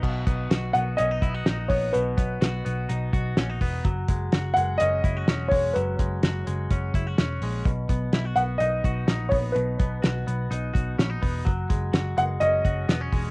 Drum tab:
CC |x-------|--------|--------|--------|
HH |-xxxxxxo|xxxxxxxo|xxxxxxxo|xxxxxxxo|
SD |--o---o-|--o---o-|--o---o-|--o---o-|
BD |oo---o-o|-o---o-o|oo---o-o|-o--oo--|

CC |--------|--------|--------|
HH |xxxxxxxo|xxxxxxxo|xxxxxxxo|
SD |--o---o-|--o---o-|--o---o-|
BD |oo---o-o|-o---o-o|oo---o-o|